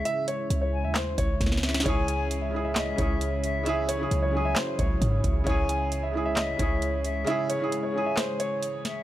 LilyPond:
<<
  \new Staff \with { instrumentName = "Flute" } { \time 4/4 \key cis \minor \tempo 4 = 133 r4. gis''8 r4. e''8 | gis''4 r4 e''4. e''8 | r4. gis''8 r2 | gis''4 r4 e''4. e''8 |
r4. gis''8 r4. e''8 | }
  \new Staff \with { instrumentName = "Grand piano" } { \time 4/4 \key cis \minor e''8 cis''8. cis''8 e''16 bis'8 cis''4. | cis''8 gis''8. e''8 e''16 dis''8 cis''4. | e''8 cis''8. cis''8 e''16 bis'8 cis''4. | cis''8 gis''8. e''8 e''16 dis''8 cis''4. |
e''8 cis''8. cis''8 e''16 bis'8 cis''4. | }
  \new Staff \with { instrumentName = "Felt piano" } { \time 4/4 \key cis \minor r1 | <cis cis' e' gis'>4 r8 <cis cis' e' gis'>8. r16 <cis cis' e' gis'>4 r8 | <cis cis' e' gis'>8 r16 <cis cis' e' gis'>8 r16 <cis cis' e' gis'>4. r4 | <cis cis' e' gis'>4 r8 <cis cis' e' gis'>8. r16 <cis cis' e' gis'>4 r8 |
<cis cis' e' gis'>8 r16 <cis cis' e' gis'>8 r16 <cis cis' e' gis'>4. r4 | }
  \new Staff \with { instrumentName = "Analog synth pad" } { \clef bass \time 4/4 \key cis \minor << { <cis e'>1~ | <cis e'>1~ | <cis e'>1~ | <cis e'>1~ |
<cis e'>1 | } \\ { gis1 | gis1 | fis1 | gis1~ |
gis1 | } >> }
  \new Staff \with { instrumentName = "808-style bass" } { \clef bass \time 4/4 \key cis \minor r4 cis,8. dis,8. cis,8 cis,4 | cis,2~ cis,8 cis,4.~ | cis,4 cis,4 r8 cis,8 gis,8 cis,8 | cis,2~ cis,8 cis,4. |
r1 | }
  \new DrumStaff \with { instrumentName = "Drums" } \drummode { \time 4/4 hh8 hh8 hh4 <hc hh sn>8 <hh bd>8 <hh bd sn>32 sn32 sn32 sn32 <hh sn>32 sn32 sn32 sn32 | <hh bd>8 hh8 hh4 <hc hh sn>8 <hh bd>8 hh8 hh8 | hh8 hh8 hh4 <hc hh sn>8 <hh bd>8 <hh bd>8 <hh bd>8 | <hh bd>8 hh8 hh4 <hc hh sn>8 <hh bd>8 hh8 hh8 |
hh8 hh8 hh4 <hc hh sn>8 hh8 hh8 <hh sn>8 | }
>>